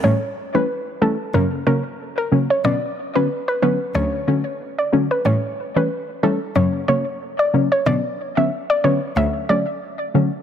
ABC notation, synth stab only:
X:1
M:4/4
L:1/16
Q:"Swing 16ths" 1/4=92
K:Bm
V:1 name="Synth stab" clef=bass
[E,G,A,C] z2 [E,G,A,C] z2 [E,G,A,C] z [C,F,^A,C]2 [C,F,A,C] z3 [C,F,A,C] z | [D,F,B,C] z2 [D,F,B,C] z2 [D,F,B,C] z [D,F,A,C]2 [D,F,A,C] z3 [D,F,A,C] z | [E,G,A,C] z2 [E,G,A,C] z2 [E,G,A,C] z [C,F,^A,C]2 [C,F,A,C] z3 [C,F,A,C] z | [D,F,B,C] z2 [D,F,B,C] z2 [D,F,B,C] z [D,F,A,C]2 [D,F,A,C] z3 [D,F,A,C] z |]